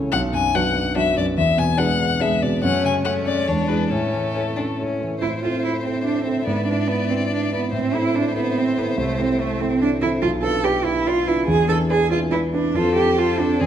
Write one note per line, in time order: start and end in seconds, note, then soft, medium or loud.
0.00 0.15 C#2 medium
0.00 0.15 C#3 soft
0.00 0.16 C#4 soft
0.00 0.15 E4 soft
0.00 0.15 A4 soft
0.12 1.34 B1 medium
0.12 0.20 F#5 medium
0.33 0.67 F#2 soft
0.33 0.56 G#5 medium
0.54 0.86 F#3 medium
0.54 0.86 D4 medium
0.54 0.73 F#4 soft
0.54 0.73 B4 soft
0.54 0.96 F#5 medium
0.76 1.09 D4 soft
0.95 1.27 F#3 medium
0.95 1.27 D4 medium
0.95 1.15 F#4 soft
0.95 1.15 B4 soft
0.95 1.17 E5 medium
1.18 1.38 F#2 soft
1.18 1.26 D5 medium
1.38 2.60 E2 medium
1.38 1.60 E5 medium
1.58 1.92 B2 soft
1.58 1.79 G#5 medium
1.78 2.10 G#3 medium
1.78 2.10 D4 medium
1.78 1.98 G#4 soft
1.78 1.98 B4 soft
1.78 2.23 F#5 medium
1.99 2.33 D4 soft
2.21 2.53 G#3 medium
2.21 2.52 D4 medium
2.21 2.40 G#4 soft
2.21 2.40 B4 soft
2.21 2.44 E5 medium
2.42 2.64 B2 soft
2.42 2.63 D5 medium
2.63 3.45 F#2 medium
2.63 3.02 A3 medium
2.63 3.02 C#4 medium
2.63 2.84 F#5 medium
2.85 3.18 C#3 soft
2.85 2.93 G#5 medium
3.05 3.48 A3 medium
3.05 3.49 C#4 medium
3.05 3.24 A4 soft
3.05 3.13 F#5 medium
3.26 3.48 C#4 soft
3.26 3.49 D5 medium
3.46 3.90 E2 soft
3.46 3.92 G#3 soft
3.46 3.92 D4 soft
3.46 3.69 C#5 medium
3.68 3.89 E4 soft
3.68 3.89 G#4 soft
3.68 3.89 B4 medium
3.89 5.18 A2 soft
3.89 5.01 A3 soft
3.89 4.30 C#4 soft
3.89 4.76 A4 medium
4.14 4.48 E3 soft
4.34 4.42 C#4 medium
4.34 4.55 E4 soft
4.34 4.55 A4 soft
4.56 4.92 C#4 soft
4.56 4.64 D4 soft
4.77 5.19 C#4 soft
4.77 4.99 E4 soft
4.77 4.99 A4 soft
5.01 5.22 E3 soft
5.20 5.43 A2 soft
5.20 5.30 E4 medium
5.20 6.43 C5 soft
5.20 7.69 E5 soft
5.42 5.82 C4 soft
5.42 5.82 E4 soft
5.42 5.63 F4 medium
5.42 5.82 A4 soft
5.64 5.72 E4 medium
5.84 6.04 C4 soft
5.84 6.23 C4 soft
5.84 6.23 E4 soft
5.84 6.24 A4 soft
6.05 6.24 D4 medium
6.25 6.45 C4 medium
6.25 6.45 C4 soft
6.25 6.46 E4 soft
6.25 6.46 A4 soft
6.46 6.68 G#2 soft
6.46 6.67 B3 medium
6.46 7.68 D5 soft
6.68 6.89 D4 medium
6.68 7.06 D4 soft
6.68 7.06 E4 soft
6.68 7.06 B4 soft
6.87 7.11 B3 medium
7.10 7.31 C4 medium
7.10 7.48 D4 soft
7.10 7.48 E4 soft
7.10 7.49 B4 soft
7.31 7.52 D4 medium
7.52 7.62 B3 medium
7.52 7.71 D4 soft
7.52 7.71 E4 soft
7.52 7.71 B4 soft
7.72 7.93 A2 soft
7.72 7.96 C4 medium
7.72 10.19 C5 medium
7.72 10.19 E5 soft
7.94 8.31 C4 soft
7.94 8.32 E4 soft
7.94 8.17 E4 medium
7.94 8.32 A4 soft
8.15 8.35 D4 medium
8.35 8.59 B3 medium
8.35 8.73 C4 soft
8.35 8.73 E4 soft
8.35 8.73 A4 soft
8.58 8.79 C4 medium
8.77 8.98 B3 medium
8.77 8.96 C4 soft
8.77 8.96 E4 soft
8.77 8.97 A4 soft
8.97 9.18 C2 medium
8.97 9.21 A3 medium
9.18 9.56 C4 soft
9.18 9.41 C4 medium
9.18 9.57 E4 soft
9.18 9.57 A4 soft
9.40 9.62 A3 medium
9.60 9.98 C4 soft
9.60 9.81 C4 medium
9.60 9.98 E4 soft
9.60 9.99 A4 soft
9.81 9.89 D4 medium
10.01 10.21 C4 soft
10.01 10.09 E4 medium
10.01 10.21 E4 soft
10.01 10.21 A4 soft
10.22 10.43 B1 medium
10.22 10.30 F4 medium
10.42 10.82 D4 soft
10.42 10.82 F4 soft
10.42 10.65 A4 medium
10.42 10.82 B4 soft
10.64 10.86 G4 medium
10.64 10.96 B4 medium
10.64 10.97 D5 soft
10.84 11.23 D4 soft
10.84 11.08 E4 medium
10.84 11.23 F4 soft
10.84 11.24 B4 soft
11.06 11.29 F4 medium
11.06 11.39 B4 medium
11.06 11.39 D5 medium
11.27 11.46 D4 soft
11.27 11.47 E4 medium
11.27 11.46 F4 soft
11.27 11.47 B4 soft
11.48 11.69 E2 medium
11.48 11.68 G#4 medium
11.68 12.07 D4 soft
11.68 12.08 E4 soft
11.68 11.77 A4 medium
11.68 12.07 B4 soft
11.90 12.10 G#4 medium
11.90 12.22 B4 medium
11.90 12.22 D5 soft
12.11 12.49 D4 soft
12.11 12.50 E4 soft
12.11 12.19 F4 medium
12.11 12.50 B4 soft
12.31 12.39 E4 medium
12.31 12.65 B4 medium
12.31 12.65 D5 medium
12.53 12.77 D4 medium
12.53 12.73 D4 soft
12.53 12.73 E4 soft
12.53 12.73 B4 soft
12.74 12.95 F2 medium
12.74 12.95 F4 medium
12.74 13.15 A4 medium
12.74 13.15 C5 soft
12.96 13.35 C4 soft
12.96 13.20 G4 medium
12.96 13.35 A4 soft
13.18 13.41 F4 medium
13.18 13.62 A4 medium
13.18 13.63 C5 soft
13.39 13.59 C4 soft
13.39 13.62 D4 medium
13.39 13.59 A4 soft
13.60 13.66 E2 soft
13.60 13.66 C4 medium
13.60 13.66 G#4 soft
13.60 13.66 D5 soft